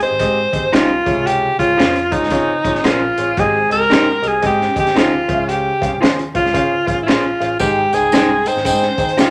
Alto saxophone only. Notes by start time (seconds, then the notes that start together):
0.03 C5
0.74 F4
1.27 G4
1.59 F4
2.12 D#4
2.87 F4
3.39 G#4
3.72 A#4
4.28 G#4
4.46 G4
4.80 G4
4.99 F4
5.49 G4
6.36 F4
7.03 E4 F4
7.60 G4
7.94 G#4
8.48 C5
9.20 F4